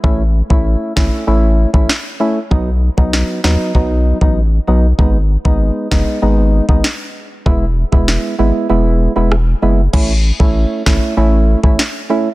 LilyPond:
<<
  \new Staff \with { instrumentName = "Synth stab" } { \time 4/4 \key a \lydian \tempo 4 = 97 <a cis' e'>16 r8 <a cis' e'>8. <a cis' e'>8 <a cis' e'>8. <a cis' e'>16 r8 <a cis' e'>16 r16 | <fis b dis'>16 r8 <fis b dis'>8. <fis b dis'>8 <fis b dis'>8. <fis b dis'>16 r8 <fis b dis'>16 r16 | <gis b dis'>16 r8 <gis b dis'>8. <gis b dis'>8 <gis b dis'>8. <gis b dis'>16 r4 | <gis b e'>16 r8 <gis b e'>8. <gis b e'>8 <gis b e'>8. <gis b e'>16 r8 <gis b e'>16 r16 |
<a cis' e'>16 r8 <a cis' e'>8. <a cis' e'>8 <a cis' e'>8. <a cis' e'>16 r8 <a cis' e'>16 r16 | }
  \new Staff \with { instrumentName = "Sub bass" } { \clef bass \time 4/4 \key a \lydian a,,8. a,,8 r16 gis,,16 r16 a,,8. a,,16 r4 | b,,8. b,,8 r16 dis,16 r16 b,,8. a,,8. b,,8 | gis,,8. gis,,8 r16 fis,,16 r16 gis,,8. gis,,16 r4 | e,,8. e,,8 r16 gis,,16 r16 e,,8. e,,8. fis,,8 |
a,,8. a,,8 r16 gis,,16 r16 a,,8. a,,16 r4 | }
  \new DrumStaff \with { instrumentName = "Drums" } \drummode { \time 4/4 bd8. bd16 r8 <bd sn>8 r8. bd16 sn4 | bd8. bd16 sn8 sn8 bd8. bd16 r4 | bd8. bd16 r8 <bd sn>8 r8. bd16 sn4 | bd8. bd16 sn4 r4 ss4 |
<cymc bd>8. bd16 r8 <bd sn>8 r8. bd16 sn4 | }
>>